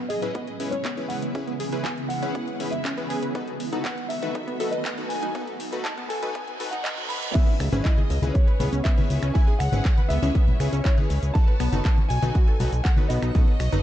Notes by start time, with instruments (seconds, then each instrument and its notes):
Already playing: ambient pad C#3 E3 G#3 B3 E4, riser
0.09 synth pluck G#4, grand piano D#5, violin section D#5, open hi-hat
0.22 supersaw synth C#4 E4 G#4 B4, synth pluck B4, closed hi-hat
0.35 synth pluck B3, kick, closed hi-hat
0.47 closed hi-hat
0.60 supersaw synth C#4 E4 G#4 B4, open hi-hat
0.71 synth pluck C#4, violin section C#5, grand piano C#5, closed hi-hat
0.85 synth pluck B3, kick, clap, closed hi-hat
0.97 supersaw synth C#4 E4 G#4 B4, closed hi-hat
1.08 grand piano F#5, violin section F#5, open hi-hat
1.22 closed hi-hat
1.35 synth pluck C#4, supersaw synth C#4 E4 G#4 B4, kick, closed hi-hat
1.47 synth pluck B3, closed hi-hat
1.60 synth pluck G#4, open hi-hat
1.72 supersaw synth C#4 E4 G#4 B4, synth pluck B4, closed hi-hat
1.83 synth pluck B3, grand piano G#5, violin section G#5, kick, clap, closed hi-hat
1.98 closed hi-hat
2.08 grand piano F#5, violin section F#5, open hi-hat
2.22 synth pluck C#4, supersaw synth C#4 E4 G#4 B4, closed hi-hat
2.35 synth pluck B3, kick, closed hi-hat
2.48 closed hi-hat
2.60 supersaw synth C#4 E4 G#4 B4, open hi-hat
2.71 grand piano E5, violin section E5, closed hi-hat
2.85 synth pluck C#4, kick, clap, closed hi-hat
2.98 synth pluck B3, supersaw synth C#4 E4 G#4 B4, closed hi-hat
3.09 synth pluck G#4, grand piano G#5, violin section G#5, open hi-hat
3.22 synth pluck B4, closed hi-hat
3.35 ambient pad D#3 F#3 A3 F#4, synth pluck B3, supersaw synth D#4 F#4 A4 B4, kick, closed hi-hat
3.48 closed hi-hat
3.60 open hi-hat
3.73 synth pluck D#4, supersaw synth D#4 F#4 A4 B4, closed hi-hat
3.84 synth pluck B3, grand piano F#5, violin section F#5, kick, clap, closed hi-hat
3.98 closed hi-hat
4.09 grand piano E5, violin section E5, open hi-hat
4.22 supersaw synth D#3 F#4 A4 B4, closed hi-hat
4.35 synth pluck D#4, kick, closed hi-hat
4.48 synth pluck B3, closed hi-hat
4.60 supersaw synth D#4 F#4 A4 B4, synth pluck A4, open hi-hat
4.71 synth pluck B4, grand piano D#5, violin section D#5, closed hi-hat
4.85 synth pluck B3, kick, clap, closed hi-hat
4.97 supersaw synth D#4 F#4 A4 B4, closed hi-hat
5.08 grand piano G#5, violin section G#5, open hi-hat
5.22 synth pluck D#4, closed hi-hat
5.35 synth pluck B3, supersaw synth D#4 F#4 A4 B4, kick, closed hi-hat
5.47 closed hi-hat
5.60 open hi-hat
5.72 supersaw synth D#4 F#4 A4 B4, closed hi-hat
5.84 synth pluck D#4, grand piano A5, violin section A5, kick, clap, closed hi-hat
5.97 synth pluck B3, closed hi-hat
6.08 synth pluck A4, grand piano G#5, violin section G#5, open hi-hat
6.22 supersaw synth D#4 F#4 A4 B4, synth pluck B4, closed hi-hat
6.35 synth pluck B3, kick, closed hi-hat, reverse cymbal
6.48 closed hi-hat
6.60 supersaw synth D#4 F#4 A4 B4, open hi-hat
6.71 synth pluck D#4, grand piano F#5, violin section F#5, closed hi-hat
6.84 synth pluck B3, grand piano D#5, kick, clap, closed hi-hat
6.98 supersaw synth D#4 F#4 A4 B4, closed hi-hat
7.09 grand piano B5, violin section B5, open hi-hat
7.23 closed hi-hat
7.34 synth pluck B3, supersaw synth C#4 E4 G#4 B4, synth texture C#5 C#6, violin section E5, grand piano E5, kick, closed hi-hat, crash, shaker
7.48 closed hi-hat
7.60 analog synth bass C#2, finger snap, open hi-hat, shaker
7.73 analog synth bass G#1, supersaw synth C#4 E4 G#4 B4, synth pluck C#4, closed hi-hat, high conga, shaker
7.84 synth pluck E4, violin section D#5, grand piano D#5, kick, clap, closed hi-hat, shaker
7.98 synth pluck G#4, closed hi-hat, high conga
8.10 analog synth bass C#2, open hi-hat, shaker
8.22 analog synth bass C#2, supersaw synth C#4 E4 G#4 B4, closed hi-hat, high conga, shaker
8.34 grand piano C#5, violin section C#5, kick, closed hi-hat, shaker
8.48 synth pluck B4, closed hi-hat
8.60 analog synth bass C#2, synth pluck B3, supersaw synth C#4 E4 G#4 B4, open hi-hat, low conga, shaker
8.73 analog synth bass C#2, synth pluck C#4, closed hi-hat, shaker
8.84 synth pluck B3, grand piano E5, violin section E5, kick, clap, closed hi-hat, shaker
8.98 supersaw synth C#4 E4 G#4 B4, closed hi-hat, high conga
9.10 analog synth bass C#2, open hi-hat, shaker
9.23 analog synth bass C#2, synth pluck C#4, finger snap, closed hi-hat, shaker
9.34 supersaw synth C#4 E4 G#4 B4, synth pluck E4, violin section G#5, grand piano G#5, kick, closed hi-hat, shaker
9.48 synth pluck G#4, closed hi-hat
9.59 analog synth bass C#2, violin section F#5, grand piano F#5, finger snap, open hi-hat, shaker
9.72 analog synth bass G#1, supersaw synth C#4 E4 G#4 B4, closed hi-hat, high conga, shaker
9.85 kick, clap, closed hi-hat, shaker
9.98 synth pluck B4, closed hi-hat, high conga
10.09 analog synth bass C#2, synth pluck B3, grand piano E5, violin section E5, open hi-hat, shaker
10.22 analog synth bass C#2, supersaw synth C#4 E4 G#4 B4, synth pluck C#4, closed hi-hat, high conga, shaker
10.35 synth pluck B3, kick, closed hi-hat, shaker
10.48 closed hi-hat, low conga
10.60 analog synth bass C#2, supersaw synth C#4 E4 G#4 B4, finger snap, open hi-hat, shaker
10.73 analog synth bass C#2, synth pluck C#4, closed hi-hat, shaker
10.84 synth pluck E4, violin section C#5, grand piano C#5, kick, clap, closed hi-hat, shaker
10.98 supersaw synth C#4 E4 G#4 B4, synth pluck G#4, closed hi-hat, high conga
11.10 analog synth bass C#2, open hi-hat, shaker
11.23 analog synth bass C#2, closed hi-hat, shaker
11.34 supersaw synth D#4 F#4 A4 B4, grand piano A5, violin section A5, kick, closed hi-hat, shaker
11.48 synth pluck B4, closed hi-hat
11.60 analog synth bass B1, synth pluck B3, finger snap, open hi-hat, shaker
11.72 analog synth bass F#1, supersaw synth D#4 F#4 A4 B4, synth pluck D#4, closed hi-hat, high conga, shaker
11.85 synth pluck B3, kick, clap, closed hi-hat, shaker
11.98 closed hi-hat, high conga
12.09 analog synth bass B1, violin section G#5, grand piano G#5, open hi-hat, shaker
12.22 analog synth bass B1, supersaw synth D#4 F#4 A4 B4, synth pluck D#4, closed hi-hat, high conga, shaker
12.35 synth pluck F#4, kick, closed hi-hat, shaker
12.48 synth pluck A4, closed hi-hat
12.60 analog synth bass B1, supersaw synth D#4 F#4 A4 B4, open hi-hat, low conga, shaker
12.73 analog synth bass B1, closed hi-hat, shaker
12.84 violin section F#5, grand piano F#5, kick, clap, closed hi-hat, shaker
12.97 supersaw synth D#4 F#4 A4 B4, synth pluck B4, closed hi-hat, high conga
13.09 analog synth bass B1, synth pluck B3, violin section D#5, grand piano D#5, open hi-hat, shaker
13.22 analog synth bass B1, synth pluck D#4, finger snap, closed hi-hat, shaker
13.35 synth pluck B3, supersaw synth D#4 F#4 A4 B4, kick, closed hi-hat, low conga, shaker
13.47 closed hi-hat
13.60 analog synth bass B1, finger snap, open hi-hat, shaker
13.72 analog synth bass F#1, synth pluck D#4, supersaw synth D#4 F#4 A4 B4, closed hi-hat, high conga, shaker